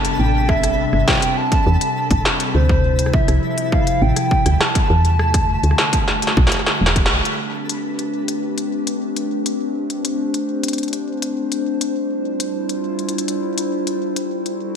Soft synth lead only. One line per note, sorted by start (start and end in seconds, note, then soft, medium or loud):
0.00 0.19 A5 loud
0.19 0.50 G5 loud
0.49 1.09 E5 loud
1.08 1.39 G5 loud
1.37 2.25 A5 loud
2.55 3.15 C5 loud
3.13 3.72 E5 loud
3.72 4.03 F5 loud
4.02 4.62 G5 loud
4.61 6.96 A5 loud